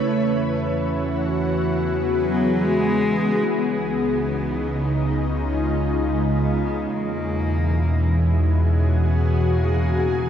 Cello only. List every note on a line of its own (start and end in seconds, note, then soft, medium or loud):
2.22 2.65 F#3 medium
2.63 3.50 G#3 medium
3.49 5.20 B3 loud
5.21 6.07 C#4 medium
6.05 6.94 B3 medium
6.92 8.23 A#3 loud
8.21 8.64 G#3 medium
8.64 9.08 G#3 medium
9.07 9.52 B3 medium
9.50 10.29 A#3 medium